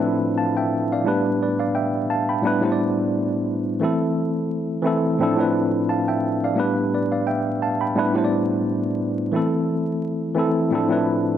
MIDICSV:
0, 0, Header, 1, 2, 480
1, 0, Start_track
1, 0, Key_signature, 0, "minor"
1, 0, Tempo, 689655
1, 743, Time_signature, 4, 2, 24, 8
1, 7919, End_track
2, 0, Start_track
2, 0, Title_t, "Tine electric piano"
2, 0, Program_c, 0, 4
2, 0, Control_c, 0, 64, 127
2, 0, Note_on_c, 0, 45, 91
2, 0, Note_on_c, 0, 53, 72
2, 0, Note_on_c, 0, 60, 79
2, 0, Note_on_c, 0, 62, 78
2, 0, Note_on_c, 0, 64, 79
2, 0, Note_on_c, 0, 71, 93
2, 262, Note_on_c, 0, 81, 72
2, 266, Note_on_c, 0, 77, 61
2, 389, Note_off_c, 0, 81, 0
2, 391, Note_off_c, 0, 77, 0
2, 395, Note_on_c, 0, 79, 73
2, 400, Note_on_c, 0, 76, 65
2, 624, Note_off_c, 0, 79, 0
2, 626, Note_off_c, 0, 76, 0
2, 635, Note_off_c, 0, 45, 0
2, 639, Note_off_c, 0, 53, 0
2, 642, Note_off_c, 0, 60, 0
2, 643, Note_on_c, 0, 77, 70
2, 645, Note_off_c, 0, 62, 0
2, 647, Note_on_c, 0, 74, 59
2, 648, Note_off_c, 0, 64, 0
2, 651, Note_off_c, 0, 71, 0
2, 722, Note_on_c, 0, 45, 80
2, 729, Note_on_c, 0, 55, 75
2, 734, Note_on_c, 0, 59, 77
2, 741, Note_on_c, 0, 62, 85
2, 747, Note_on_c, 0, 67, 76
2, 752, Control_c, 0, 64, 0
2, 753, Note_on_c, 0, 71, 95
2, 868, Note_off_c, 0, 77, 0
2, 870, Note_off_c, 0, 74, 0
2, 895, Control_c, 0, 64, 127
2, 989, Note_off_c, 0, 71, 0
2, 992, Note_on_c, 0, 74, 68
2, 996, Note_on_c, 0, 71, 55
2, 1106, Note_off_c, 0, 74, 0
2, 1110, Note_on_c, 0, 77, 68
2, 1114, Note_on_c, 0, 74, 60
2, 1116, Note_off_c, 0, 71, 0
2, 1215, Note_off_c, 0, 77, 0
2, 1216, Note_on_c, 0, 79, 78
2, 1217, Note_off_c, 0, 74, 0
2, 1220, Note_on_c, 0, 76, 62
2, 1371, Note_off_c, 0, 45, 0
2, 1374, Note_off_c, 0, 55, 0
2, 1377, Note_off_c, 0, 59, 0
2, 1380, Note_off_c, 0, 62, 0
2, 1383, Note_off_c, 0, 67, 0
2, 1448, Note_off_c, 0, 79, 0
2, 1450, Note_off_c, 0, 76, 0
2, 1462, Note_on_c, 0, 81, 70
2, 1466, Note_on_c, 0, 77, 60
2, 1589, Note_off_c, 0, 81, 0
2, 1591, Note_off_c, 0, 77, 0
2, 1593, Note_on_c, 0, 83, 65
2, 1598, Note_on_c, 0, 79, 54
2, 1687, Note_on_c, 0, 45, 85
2, 1694, Note_on_c, 0, 55, 78
2, 1700, Note_on_c, 0, 59, 86
2, 1706, Note_on_c, 0, 62, 85
2, 1712, Note_on_c, 0, 64, 93
2, 1713, Control_c, 0, 64, 0
2, 1718, Note_on_c, 0, 71, 107
2, 1809, Note_off_c, 0, 45, 0
2, 1814, Note_off_c, 0, 55, 0
2, 1817, Note_off_c, 0, 59, 0
2, 1817, Note_on_c, 0, 45, 90
2, 1821, Note_off_c, 0, 62, 0
2, 1823, Note_off_c, 0, 83, 0
2, 1824, Note_off_c, 0, 64, 0
2, 1824, Note_on_c, 0, 55, 87
2, 1825, Note_off_c, 0, 79, 0
2, 1827, Note_off_c, 0, 71, 0
2, 1830, Note_on_c, 0, 59, 77
2, 1836, Note_on_c, 0, 62, 81
2, 1843, Note_on_c, 0, 64, 74
2, 1849, Note_on_c, 0, 72, 76
2, 1851, Control_c, 0, 64, 127
2, 1883, Note_off_c, 0, 72, 0
2, 1894, Note_on_c, 0, 74, 85
2, 2558, Note_off_c, 0, 45, 0
2, 2562, Note_off_c, 0, 55, 0
2, 2564, Note_off_c, 0, 59, 0
2, 2568, Note_off_c, 0, 62, 0
2, 2571, Note_off_c, 0, 64, 0
2, 2596, Note_off_c, 0, 74, 0
2, 2643, Note_on_c, 0, 52, 80
2, 2651, Note_on_c, 0, 57, 83
2, 2659, Note_on_c, 0, 60, 81
2, 2667, Note_on_c, 0, 64, 74
2, 2673, Control_c, 0, 64, 0
2, 2674, Note_on_c, 0, 69, 94
2, 2777, Control_c, 0, 64, 127
2, 3291, Note_off_c, 0, 52, 0
2, 3295, Note_off_c, 0, 57, 0
2, 3299, Note_off_c, 0, 60, 0
2, 3303, Note_off_c, 0, 64, 0
2, 3307, Note_off_c, 0, 69, 0
2, 3357, Note_on_c, 0, 52, 95
2, 3365, Note_on_c, 0, 57, 78
2, 3372, Note_on_c, 0, 60, 83
2, 3381, Note_on_c, 0, 64, 79
2, 3388, Note_on_c, 0, 69, 98
2, 3609, Note_on_c, 0, 45, 92
2, 3610, Note_off_c, 0, 52, 0
2, 3613, Note_off_c, 0, 60, 0
2, 3614, Note_off_c, 0, 57, 0
2, 3615, Note_on_c, 0, 53, 80
2, 3622, Note_off_c, 0, 64, 0
2, 3622, Note_on_c, 0, 60, 90
2, 3626, Note_off_c, 0, 69, 0
2, 3628, Note_on_c, 0, 62, 92
2, 3633, Control_c, 0, 64, 0
2, 3634, Note_on_c, 0, 64, 79
2, 3640, Note_on_c, 0, 69, 104
2, 3721, Note_off_c, 0, 45, 0
2, 3728, Note_off_c, 0, 53, 0
2, 3729, Note_on_c, 0, 45, 91
2, 3734, Note_off_c, 0, 60, 0
2, 3736, Note_on_c, 0, 53, 73
2, 3740, Note_off_c, 0, 62, 0
2, 3742, Note_on_c, 0, 60, 75
2, 3745, Note_off_c, 0, 64, 0
2, 3748, Note_off_c, 0, 69, 0
2, 3748, Note_on_c, 0, 62, 77
2, 3755, Note_on_c, 0, 64, 78
2, 3761, Note_on_c, 0, 71, 92
2, 3767, Control_c, 0, 64, 127
2, 4101, Note_on_c, 0, 81, 73
2, 4106, Note_on_c, 0, 77, 64
2, 4228, Note_off_c, 0, 81, 0
2, 4231, Note_off_c, 0, 77, 0
2, 4232, Note_on_c, 0, 79, 72
2, 4237, Note_on_c, 0, 76, 64
2, 4462, Note_off_c, 0, 79, 0
2, 4465, Note_off_c, 0, 76, 0
2, 4474, Note_off_c, 0, 45, 0
2, 4478, Note_off_c, 0, 53, 0
2, 4481, Note_off_c, 0, 60, 0
2, 4483, Note_on_c, 0, 77, 71
2, 4484, Note_off_c, 0, 62, 0
2, 4487, Note_off_c, 0, 64, 0
2, 4487, Note_on_c, 0, 74, 58
2, 4490, Note_off_c, 0, 71, 0
2, 4560, Note_on_c, 0, 45, 81
2, 4566, Note_on_c, 0, 55, 75
2, 4573, Note_on_c, 0, 59, 81
2, 4579, Note_on_c, 0, 62, 80
2, 4585, Note_on_c, 0, 67, 76
2, 4592, Note_on_c, 0, 71, 98
2, 4593, Control_c, 0, 64, 0
2, 4708, Note_off_c, 0, 77, 0
2, 4710, Note_off_c, 0, 74, 0
2, 4736, Control_c, 0, 64, 127
2, 4828, Note_off_c, 0, 71, 0
2, 4833, Note_on_c, 0, 74, 64
2, 4837, Note_on_c, 0, 71, 55
2, 4949, Note_off_c, 0, 74, 0
2, 4953, Note_on_c, 0, 77, 67
2, 4957, Note_off_c, 0, 71, 0
2, 4957, Note_on_c, 0, 74, 60
2, 5057, Note_off_c, 0, 77, 0
2, 5058, Note_on_c, 0, 79, 80
2, 5059, Note_off_c, 0, 74, 0
2, 5061, Note_on_c, 0, 76, 63
2, 5210, Note_off_c, 0, 45, 0
2, 5213, Note_off_c, 0, 55, 0
2, 5216, Note_off_c, 0, 59, 0
2, 5219, Note_off_c, 0, 62, 0
2, 5222, Note_off_c, 0, 67, 0
2, 5288, Note_off_c, 0, 79, 0
2, 5290, Note_off_c, 0, 76, 0
2, 5305, Note_on_c, 0, 81, 69
2, 5308, Note_on_c, 0, 77, 62
2, 5431, Note_off_c, 0, 81, 0
2, 5432, Note_off_c, 0, 77, 0
2, 5435, Note_on_c, 0, 83, 66
2, 5439, Note_on_c, 0, 79, 55
2, 5532, Note_on_c, 0, 45, 88
2, 5538, Note_on_c, 0, 55, 80
2, 5544, Note_on_c, 0, 59, 83
2, 5551, Note_on_c, 0, 62, 87
2, 5552, Control_c, 0, 64, 0
2, 5557, Note_on_c, 0, 64, 96
2, 5564, Note_on_c, 0, 71, 102
2, 5653, Note_off_c, 0, 45, 0
2, 5657, Note_off_c, 0, 55, 0
2, 5660, Note_off_c, 0, 59, 0
2, 5663, Note_off_c, 0, 62, 0
2, 5663, Note_off_c, 0, 83, 0
2, 5663, Note_on_c, 0, 45, 86
2, 5666, Note_off_c, 0, 64, 0
2, 5666, Note_off_c, 0, 79, 0
2, 5669, Note_off_c, 0, 71, 0
2, 5669, Note_on_c, 0, 55, 84
2, 5675, Note_on_c, 0, 59, 75
2, 5681, Note_on_c, 0, 62, 78
2, 5687, Control_c, 0, 64, 127
2, 5687, Note_on_c, 0, 64, 72
2, 5694, Note_on_c, 0, 72, 77
2, 5726, Note_off_c, 0, 72, 0
2, 5739, Note_on_c, 0, 74, 89
2, 6401, Note_off_c, 0, 45, 0
2, 6404, Note_off_c, 0, 55, 0
2, 6407, Note_off_c, 0, 59, 0
2, 6410, Note_off_c, 0, 62, 0
2, 6413, Note_off_c, 0, 64, 0
2, 6439, Note_off_c, 0, 74, 0
2, 6484, Note_on_c, 0, 52, 83
2, 6492, Note_on_c, 0, 57, 82
2, 6500, Note_on_c, 0, 60, 78
2, 6508, Note_on_c, 0, 64, 74
2, 6512, Control_c, 0, 64, 0
2, 6515, Note_on_c, 0, 69, 92
2, 6623, Control_c, 0, 64, 127
2, 7132, Note_off_c, 0, 52, 0
2, 7136, Note_off_c, 0, 57, 0
2, 7140, Note_off_c, 0, 60, 0
2, 7144, Note_off_c, 0, 64, 0
2, 7147, Note_off_c, 0, 69, 0
2, 7201, Note_on_c, 0, 52, 93
2, 7208, Note_on_c, 0, 57, 79
2, 7216, Note_on_c, 0, 60, 81
2, 7224, Note_on_c, 0, 64, 82
2, 7232, Note_on_c, 0, 69, 100
2, 7451, Note_on_c, 0, 45, 94
2, 7452, Note_off_c, 0, 52, 0
2, 7455, Note_off_c, 0, 60, 0
2, 7456, Note_off_c, 0, 57, 0
2, 7458, Note_on_c, 0, 53, 80
2, 7464, Note_off_c, 0, 64, 0
2, 7464, Note_on_c, 0, 60, 87
2, 7468, Note_off_c, 0, 69, 0
2, 7469, Note_on_c, 0, 62, 89
2, 7474, Control_c, 0, 64, 0
2, 7476, Note_on_c, 0, 64, 79
2, 7483, Note_on_c, 0, 69, 106
2, 7563, Note_off_c, 0, 45, 0
2, 7570, Note_off_c, 0, 53, 0
2, 7571, Note_on_c, 0, 45, 91
2, 7575, Note_off_c, 0, 60, 0
2, 7578, Note_on_c, 0, 53, 76
2, 7582, Note_off_c, 0, 62, 0
2, 7584, Note_on_c, 0, 60, 76
2, 7586, Note_off_c, 0, 64, 0
2, 7589, Note_off_c, 0, 69, 0
2, 7590, Note_on_c, 0, 62, 78
2, 7596, Control_c, 0, 64, 127
2, 7597, Note_on_c, 0, 64, 76
2, 7603, Note_on_c, 0, 71, 93
2, 7919, Note_off_c, 0, 45, 0
2, 7919, Note_off_c, 0, 53, 0
2, 7919, Note_off_c, 0, 60, 0
2, 7919, Note_off_c, 0, 62, 0
2, 7919, Note_off_c, 0, 64, 0
2, 7919, Note_off_c, 0, 71, 0
2, 7919, End_track
0, 0, End_of_file